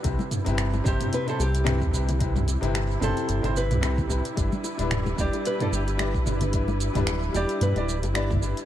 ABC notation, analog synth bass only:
X:1
M:4/4
L:1/16
Q:"Swing 16ths" 1/4=111
K:G
V:1 name="Analog synth bass" clef=bass
C,, z2 G,,,3 G,,, z3 C,,3 E,, C,,2- | C,,3 G,,,3 G,,, z G,,, G,,,2 C,,3 C,, z | G,,, z2 D,,,3 E,,, z3 G,,,3 B,,, G,,,2- | G,,,3 D,,,3 E,,, z G,, D,,,2 G,,,3 G,,, z |]